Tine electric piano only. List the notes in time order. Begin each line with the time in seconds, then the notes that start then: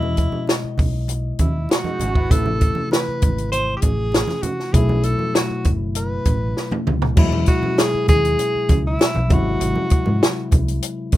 Already playing: B2 G#3 E4 D#5
2.30 C3 E3 A3 E4
4.72 B2 F#3 A3 E4
7.16 B2 F#3 G#3 E4
9.29 C3 F#3 G#3 E4